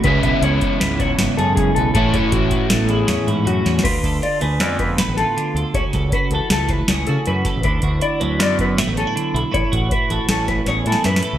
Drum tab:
CC |------------------------------|------------------------------|x-----------------------------|------------------------------|
HH |x--x--x--x--x--x--x--x--x--x--|x--x--x--x--x--x--x--x--x--x--|x--x--x--x--x--x--x--x--x--x--|x--x--x--x--x--x--x--x--x--x--|
SD |------------o-----o-----------|------------o-----o--------o-o|------------o-----o--o--------|---o--------o--o--o--------o--|
BD |o--o-----o-----o--------o-----|o--o--o--o--------------------|o--o-----------o--------------|o--o--o--------o-----------o--|

CC |------------------------------|------------------------------|
HH |x--x--x--x--x--x--x--x--x--x--|x--x--x--x--x--x--x--x--x--x--|
SD |------------o-----o-----------|------------o--o--o---o-o-o---|
BD |o--o-----------o--------------|o--o--o--------o--------------|